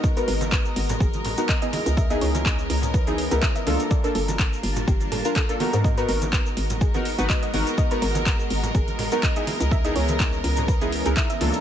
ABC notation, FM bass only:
X:1
M:4/4
L:1/16
Q:"Swing 16ths" 1/4=124
K:G#m
V:1 name="FM bass" clef=bass
z2 G,,,4 G,,,2 G,,,3 z4 C,,- | C,,2 C,,4 C,,4- C,, C,, z2 C,, z | z2 =G,,,4 G,,,2 G,,,3 z4 ^G,,- | G,,2 G,,,4 G,,,4- G,,, G,,, z2 G,,, z |
z2 G,,,4 G,,,2 G,,,3 z4 C,,- | C,,2 C,,4 C,,4- C,, C,, z2 C,, z |]